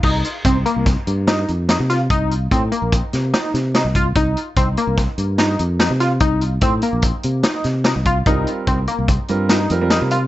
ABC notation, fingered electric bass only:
X:1
M:5/4
L:1/16
Q:1/4=146
K:Cdor
V:1 name="Fingered electric bass" clef=bass
C,,2 z2 C,,2 z C,,2 z G,,4 F,,3 C,3 | C,,4 A,,2 z B,,,2 z C,2 z2 C,3 C,,3 | C,,2 z2 C,,2 z C,,2 z G,,4 F,,3 C,3 | C,,4 A,,2 z B,,,2 z C,2 z2 C,3 C,,3 |
C,,2 z2 C,,2 z C,,2 z G,,4 F,,3 C,3 |]